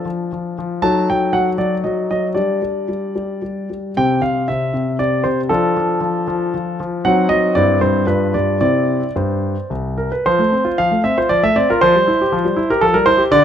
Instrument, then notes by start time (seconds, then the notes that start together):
grand piano
Already playing: D4
0.05 F3
0.33 F3
0.58 F3
0.82 F#3 D#4 A4 A5
1.10 F#3 G5
1.33 F#3 F#5
1.58 F#3 D5
1.84 F#3 D#5
2.11 F#3 D#5
2.35 G3 D4 G4 D5
2.62 G3
2.89 G3
3.15 G3
3.42 G3
3.70 G3
3.97 C3 C4 G4 G5
4.21 C3 F5
4.48 C3 E5
4.74 C3
4.99 C3 D5
5.24 C3 C5
5.49 F3 D4 F4 A4
5.77 F3
6.01 F3
6.28 F3
6.54 F3
6.80 F3
7.05 F#3 C4 D#4 F#5
7.29 F#3 D#5
7.55 G2 C4 E4 D5
7.81 G2 C5
8.07 G2 D4 F4 B4
8.34 G2 D5
8.61 C3 C4 E4 D5
9.16 G2 C5
9.70 C2
9.98 A#4
10.12 B4
10.26 F3 C5
10.39 A3
10.52 C4
10.65 F4
10.78 F3 F5
10.91 A3
11.04 C4 E5
11.18 F4 C5
11.29 F3 D5
11.43 A3 E5
11.56 C4 D5
11.70 F4 A#4
11.81 F3 C5
11.95 G3
12.08 E4
12.21 G4
12.32 F3
12.45 G3
12.57 E4
12.70 G4 A#4
12.81 F3 A4
12.94 G3 A#4
13.06 E4 C5
13.18 G4
13.31 D3 D5